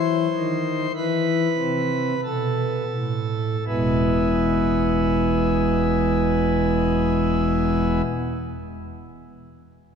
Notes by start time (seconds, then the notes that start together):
Already playing: E3 C5
0.36 D#3
0.95 E3 B4
1.58 C3
2.24 B2 A4
2.93 A2
3.67 E1 E2 B2 G#3 B3 E4